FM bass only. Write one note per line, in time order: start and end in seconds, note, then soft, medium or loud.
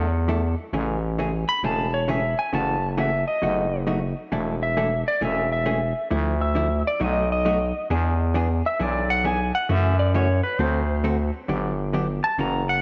0.00 0.55 E2 medium
0.73 1.45 A1 loud
1.63 2.35 E1 medium
2.53 3.24 F#1 medium
3.43 4.14 F#1 medium
4.32 5.04 E1 medium
5.21 5.93 E1 medium
6.11 6.83 D2 medium
7.01 7.72 B1 medium
7.90 8.62 E2 medium
8.80 9.52 B1 medium
9.69 10.41 F#2 medium
10.59 11.31 D2 medium
11.49 12.21 G1 medium
12.38 12.82 F#1 medium